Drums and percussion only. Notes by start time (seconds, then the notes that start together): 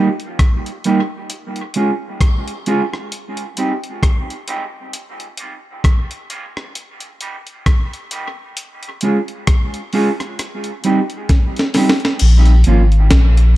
0.20 closed hi-hat
0.39 kick, cross-stick, closed hi-hat
0.66 closed hi-hat
0.84 closed hi-hat
1.30 closed hi-hat
1.56 closed hi-hat
1.74 closed hi-hat
2.21 kick, cross-stick, closed hi-hat
2.48 closed hi-hat
2.66 closed hi-hat
2.94 cross-stick
3.12 closed hi-hat
3.37 closed hi-hat
3.57 closed hi-hat
3.84 closed hi-hat
4.03 kick, cross-stick, closed hi-hat
4.30 closed hi-hat
4.48 closed hi-hat
4.93 closed hi-hat
5.20 closed hi-hat
5.37 closed hi-hat
5.84 kick, cross-stick, closed hi-hat
6.11 closed hi-hat
6.30 closed hi-hat
6.57 cross-stick
6.75 closed hi-hat
7.00 closed hi-hat
7.21 closed hi-hat
7.47 closed hi-hat
7.66 kick, cross-stick, closed hi-hat
7.93 closed hi-hat
8.11 closed hi-hat
8.57 closed hi-hat
8.83 closed hi-hat
9.01 closed hi-hat
9.28 closed hi-hat
9.47 kick, cross-stick, closed hi-hat
9.74 closed hi-hat
9.93 open hi-hat
10.20 cross-stick, closed hi-hat
10.39 cross-stick, closed hi-hat
10.64 closed hi-hat
10.84 closed hi-hat
11.10 closed hi-hat
11.29 kick, snare, closed hi-hat
11.56 snare, closed hi-hat
11.74 snare, open hi-hat
11.90 snare
12.00 closed hi-hat
12.05 snare
12.19 closed hi-hat, crash
12.46 closed hi-hat
12.64 closed hi-hat
12.92 closed hi-hat
13.11 kick, snare, closed hi-hat
13.37 closed hi-hat